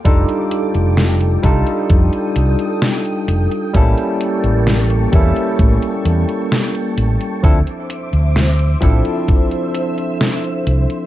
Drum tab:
HH |xxxxxxxxxxxxxxxx|xxxxxxxxxxxxxxxx|xxxxxxxxxxxxxxxx|
SD |----o-------o---|----o-------o---|----o-------o---|
BD |o-----o-o-------|o-----o-o-------|o-----o-o-------|